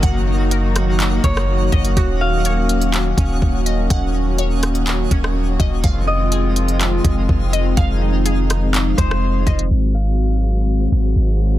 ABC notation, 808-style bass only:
X:1
M:4/4
L:1/8
Q:1/4=124
K:Ebdor
V:1 name="808-style bass" clef=bass
G,,,4- G,,, G,,,2 G,,, | E,,,4- E,,, E,,, E,,,2 | E,,,4- E,,, E,,,2 E,,, | F,,,4- F,,, F,,, F,,,2 |
F,,,4- F,,, F,,,2 F,,, | A,,,4- A,,, A,,, A,,,2 |]